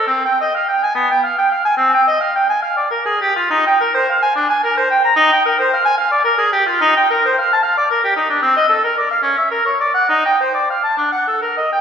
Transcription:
0.07 0.23 C4 medium
0.25 0.40 G5 medium
0.41 0.54 D#5 soft
0.54 0.67 F5 soft
0.68 0.82 G5 soft
0.83 0.94 G#5 medium
0.95 1.09 B3 medium
1.11 1.23 G5 medium
1.23 1.37 F5 medium
1.38 1.51 G5 medium
1.51 1.64 F5 soft
1.65 1.76 G#5 medium
1.77 1.92 C4 medium
1.94 2.06 G5 medium
2.07 2.20 D#5 soft
2.20 2.34 F5 medium
2.35 2.49 G5 medium
2.49 2.61 G#5 medium
2.62 2.76 F5 medium
2.76 2.90 D5 medium
2.90 3.05 A#4 medium
3.05 3.20 G#4 soft
3.21 3.35 G4 medium
3.36 3.50 F4 medium
3.50 3.65 D#4 medium
3.66 3.80 G5 medium
3.80 3.94 A#4 medium
3.94 4.07 C5 medium
4.09 4.21 F5 medium
4.22 4.35 G#5 medium
4.35 4.48 D4 medium
4.49 4.62 G#5 medium
4.63 4.76 A#4 medium
4.77 4.90 C5 medium
4.90 5.03 G5 medium
5.04 5.15 A#5 medium
5.16 5.29 D#4 medium
5.32 5.44 G5 medium
5.45 5.57 A#4 medium
5.59 5.71 C5 medium
5.73 5.84 F5 medium
5.85 5.97 G#5 medium
5.98 6.10 F5 medium
6.11 6.23 D5 medium
6.24 6.37 A#4 medium
6.38 6.52 G#4 medium
6.52 6.66 G4 medium
6.66 6.80 F4 medium
6.80 6.95 D#4 medium
6.97 7.09 G5 medium
7.10 7.23 A#4 medium
7.25 7.37 C5 medium
7.38 7.50 F5 medium
7.53 7.62 A5 medium
7.62 7.76 F5 medium
7.77 7.90 D5 medium
7.90 8.03 A#4 medium
8.04 8.16 G4 medium
8.16 8.29 D#4 medium
8.29 8.41 D4 medium
8.42 8.55 C4 medium
8.56 8.68 D#5 medium
8.69 8.81 A4 medium
8.84 8.96 A#4 medium
8.97 9.09 D5 medium
9.11 9.21 F5 medium
9.22 9.35 C#4 medium
9.37 9.50 E5 medium
9.51 9.64 A#4 medium
9.65 9.79 C#5 medium
9.80 9.94 D5 medium
9.94 10.08 F#5 medium
10.09 10.23 D#4 medium
10.26 10.39 G5 medium
10.41 10.54 C5 medium
10.54 10.68 D5 medium
10.70 10.83 F5 soft
10.83 10.96 A5 medium
10.97 11.11 D4 medium
11.12 11.26 F#5 soft
11.27 11.41 A4 soft
11.42 11.56 A#4 soft
11.57 11.71 D#5 soft
11.73 11.81 G5 medium

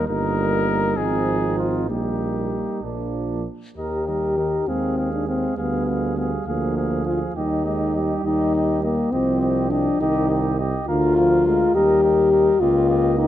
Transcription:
0.08 0.93 G1 soft
0.08 1.00 G3 soft
0.08 0.99 A#3 soft
0.08 0.93 D#4 soft
0.08 0.98 A#4 medium
0.97 1.91 G#1 soft
0.97 1.89 F3 soft
0.97 1.90 C4 soft
0.97 1.88 D#4 soft
0.97 1.58 G#4 medium
1.58 1.88 F4 soft
1.89 2.66 A#1 soft
1.89 2.81 G3 soft
1.89 2.83 A#3 soft
1.89 2.85 D#4 soft
1.89 2.81 G4 soft
2.83 3.45 A#1 soft
2.83 3.45 F3 soft
2.83 3.45 A#3 soft
2.83 3.46 D4 soft
3.77 4.58 D#2 soft
3.77 4.10 D#3 soft
3.77 4.70 G4 medium
3.77 4.07 A#4 soft
3.77 4.07 D#5 soft
4.07 4.40 G3 soft
4.07 4.37 A#4 soft
4.07 4.37 D#5 soft
4.38 4.68 D#3 soft
4.38 4.67 A#4 soft
4.38 4.68 D#5 soft
4.68 5.47 D#2 soft
4.68 5.60 G#3 soft
4.68 5.13 C4 medium
4.68 4.98 G#4 soft
4.68 4.97 F5 soft
4.98 5.28 G#4 soft
4.98 5.27 F5 soft
5.14 5.27 D4 soft
5.28 5.57 C4 soft
5.28 5.58 G#4 soft
5.28 5.56 F5 soft
5.57 6.37 D2 soft
5.57 6.47 G3 soft
5.57 6.17 B3 soft
5.57 5.87 G#4 soft
5.57 5.86 F5 soft
5.86 6.18 G#4 soft
5.86 6.15 F5 soft
6.16 6.31 B3 soft
6.16 6.47 G#4 soft
6.16 6.45 F5 soft
6.46 7.25 D2 soft
6.46 7.34 F3 soft
6.46 7.05 A#3 soft
6.46 6.77 G#4 soft
6.46 6.76 F5 soft
6.76 7.06 G#4 soft
6.76 7.05 F5 soft
7.06 7.19 F4 medium
7.06 7.35 G#4 soft
7.06 7.35 F5 soft
7.36 8.14 D#2 soft
7.36 7.64 G3 soft
7.36 8.23 D#4 medium
7.36 7.65 G4 soft
7.36 7.65 D#5 soft
7.65 7.97 G#3 soft
7.65 7.94 G4 soft
7.65 7.94 D#5 soft
7.95 9.12 G3 medium
7.95 8.25 G4 soft
7.95 8.24 D#5 soft
8.24 9.02 D#2 soft
8.24 8.83 D#4 medium
8.24 8.55 G4 soft
8.24 8.54 D#5 soft
8.55 8.84 G4 soft
8.55 8.82 D#5 soft
8.83 9.13 A#3 medium
8.83 9.12 G4 soft
8.83 9.12 D#5 soft
9.12 9.90 C2 medium
9.12 9.98 F3 medium
9.12 9.71 C4 medium
9.12 9.41 G4 soft
9.12 9.40 D#5 soft
9.41 9.70 G4 soft
9.41 9.70 D#5 soft
9.69 10.01 D4 medium
9.69 10.00 G4 soft
9.69 10.00 D#5 soft
10.00 10.78 C2 medium
10.00 10.60 D#3 medium
10.00 10.59 D#4 medium
10.00 10.29 G4 soft
10.00 10.28 D#5 soft
10.29 10.59 G4 soft
10.29 10.58 D#5 soft
10.59 10.88 G4 soft
10.59 10.87 D#5 soft
10.88 11.65 D2 medium
10.88 11.15 D3 soft
10.88 11.76 F4 medium
10.88 11.16 A#4 soft
10.88 11.16 F5 soft
11.16 11.48 F3 medium
11.16 11.45 A#4 soft
11.16 11.45 F5 soft
11.46 11.77 G#3 medium
11.46 11.75 A#4 soft
11.46 11.74 F5 soft
11.74 12.51 D#2 medium
11.74 12.60 G3 medium
11.74 12.62 G4 medium
11.74 12.03 A#4 soft
11.74 12.03 D#5 soft
12.03 12.31 A#4 soft
12.03 12.31 D#5 soft
12.32 12.60 A#4 soft
12.32 12.60 D#5 soft
12.60 13.27 C#2 medium
12.60 13.27 A#3 medium
12.60 13.18 F4 medium
12.60 12.89 G4 soft
12.60 12.89 D#5 soft
12.89 13.18 G4 soft
12.89 13.18 D#5 soft
13.18 13.27 D#4 medium
13.18 13.27 G4 soft
13.18 13.27 D#5 soft

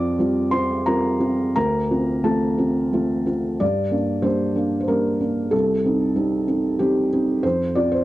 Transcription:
0.00 1.58 F2 medium
0.00 0.16 C4 soft
0.00 0.16 F4 soft
0.00 0.48 D5 medium
0.00 0.51 D6 loud
0.19 0.49 G3 soft
0.19 0.49 C4 soft
0.19 0.49 F4 soft
0.51 0.82 C4 soft
0.51 0.83 F4 soft
0.51 0.84 C5 medium
0.51 0.85 C6 medium
0.86 1.17 G3 soft
0.86 1.17 C4 soft
0.86 1.17 F4 soft
0.86 1.52 A#4 medium
0.86 1.54 A#5 medium
1.20 1.51 C4 soft
1.20 1.52 F4 soft
1.56 1.90 D2 medium
1.56 2.21 A#4 medium
1.56 2.25 A#5 medium
1.91 2.21 C4 soft
1.91 2.22 F4 soft
2.24 2.55 A3 soft
2.24 2.56 C4 soft
2.24 2.55 F4 soft
2.24 3.23 A4 soft
2.24 3.27 A5 medium
2.58 2.89 C4 soft
2.58 2.89 F4 soft
2.93 3.24 A3 soft
2.93 3.24 C4 soft
2.93 3.24 F4 soft
3.26 3.57 C4 soft
3.26 3.57 F4 soft
3.60 3.92 G2 medium
3.60 4.25 D5 medium
3.91 4.21 A#3 soft
3.91 4.22 D4 soft
4.22 4.53 G3 soft
4.22 4.53 A#3 soft
4.22 4.53 D4 soft
4.22 4.79 C5 medium
4.56 4.85 A#3 soft
4.56 4.86 D4 soft
4.80 4.88 C5 medium
4.88 5.17 G3 soft
4.88 5.18 A#3 soft
4.88 5.18 D4 soft
4.88 5.52 A#4 medium
5.21 5.49 A#3 soft
5.21 5.50 D4 soft
5.51 5.83 C2 soft
5.51 6.79 A4 medium
5.85 6.13 C4 soft
5.85 6.14 D#4 soft
6.16 6.45 G3 soft
6.16 6.45 C4 soft
6.16 6.45 D#4 soft
6.48 6.77 C4 soft
6.48 6.77 D#4 soft
6.79 7.09 G3 soft
6.79 7.09 C4 soft
6.79 7.09 D#4 soft
6.79 7.43 G4 medium
7.13 7.41 C4 soft
7.13 7.41 D#4 soft
7.43 7.75 F2 soft
7.43 7.75 C5 medium
7.75 8.04 C4 soft
7.75 8.04 F4 soft
7.75 7.91 D5 medium
7.92 8.04 C5 medium

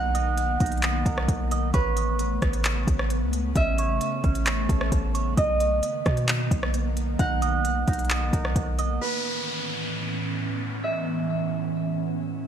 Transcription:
0.00 0.58 B1 loud
0.00 1.70 D#3 medium
0.00 1.70 A#3 medium
0.00 8.97 B3 medium
0.00 0.59 D#4 medium
0.00 1.70 F#5 loud
0.15 0.82 D#5 loud
0.15 closed hi-hat medium
0.37 closed hi-hat medium
0.60 1.04 B1 loud
0.60 1.74 D#4 medium
0.60 kick medium
0.60 closed hi-hat medium
0.66 closed hi-hat soft
0.72 closed hi-hat soft
0.77 closed hi-hat soft
0.83 1.50 D#5 loud
0.83 clap loud
0.83 closed hi-hat medium
1.06 1.28 B1 loud
1.06 1.74 A#4 medium
1.06 kick loud
1.06 closed hi-hat medium
1.18 cross-stick loud
1.28 1.72 B1 loud
1.28 kick loud
1.28 closed hi-hat medium
1.51 1.73 D#5 loud
1.51 closed hi-hat medium
1.74 2.39 A1 loud
1.74 5.34 C#3 medium
1.74 3.54 A3 medium
1.74 3.79 B4 loud
1.74 3.10 C#5 loud
1.74 kick loud
1.74 closed hi-hat medium
1.97 closed hi-hat medium
2.19 closed hi-hat medium
2.42 2.86 A1 loud
2.42 kick medium
2.42 cross-stick loud
2.42 closed hi-hat soft
2.53 closed hi-hat medium
2.65 clap loud
2.65 closed hi-hat medium
2.87 3.23 A1 loud
2.87 kick loud
2.87 closed hi-hat medium
2.99 cross-stick loud
3.10 closed hi-hat medium
3.22 3.54 C#2 loud
3.33 closed hi-hat medium
3.56 3.99 A1 loud
3.56 5.36 A3 medium
3.56 4.23 C#4 medium
3.56 5.34 E5 loud
3.56 kick loud
3.56 closed hi-hat medium
3.78 4.45 C#5 loud
3.78 closed hi-hat medium
4.01 closed hi-hat medium
4.24 4.68 A1 loud
4.24 5.38 C#4 medium
4.24 kick medium
4.24 closed hi-hat soft
4.35 closed hi-hat medium
4.46 5.13 C#5 loud
4.46 clap loud
4.46 closed hi-hat medium
4.69 4.91 A1 loud
4.69 5.38 A4 medium
4.69 kick loud
4.69 closed hi-hat medium
4.81 cross-stick loud
4.92 5.36 A1 loud
4.92 kick loud
4.92 closed hi-hat medium
5.15 5.37 C#5 medium
5.15 closed hi-hat medium
5.37 5.81 B1 loud
5.37 8.98 D#3 medium
5.37 8.98 A#3 medium
5.37 6.74 D#5 loud
5.37 7.16 D#5 loud
5.37 kick loud
5.37 closed hi-hat medium
5.60 closed hi-hat medium
5.83 closed hi-hat medium
6.06 6.49 B2 loud
6.06 kick loud
6.06 cross-stick loud
6.06 closed hi-hat soft
6.17 closed hi-hat medium
6.28 clap loud
6.28 closed hi-hat medium
6.51 7.17 B1 loud
6.51 kick loud
6.51 closed hi-hat medium
6.63 cross-stick loud
6.74 closed hi-hat medium
6.97 closed hi-hat medium
7.19 7.85 B1 loud
7.19 7.86 D#4 medium
7.19 8.97 F#5 loud
7.19 kick loud
7.19 closed hi-hat medium
7.42 8.09 D#5 medium
7.42 closed hi-hat medium
7.65 closed hi-hat medium
7.87 8.31 B1 loud
7.87 9.01 D#4 medium
7.87 kick medium
7.87 closed hi-hat medium
7.93 closed hi-hat soft
7.99 closed hi-hat soft
8.05 closed hi-hat soft
8.10 8.78 D#5 loud
8.10 clap loud
8.10 closed hi-hat medium
8.33 8.55 B1 loud
8.33 9.01 A#4 medium
8.33 kick loud
8.33 closed hi-hat medium
8.45 cross-stick loud
8.56 8.99 B1 loud
8.56 kick loud
8.56 closed hi-hat medium
8.79 9.01 D#5 loud
8.79 closed hi-hat medium
9.01 12.47 A2 medium
9.01 12.47 E3 medium
9.01 12.47 B3 medium
9.01 12.47 C#4 medium
9.01 11.06 B4 loud
9.01 downlifter medium
10.84 12.47 E5 medium

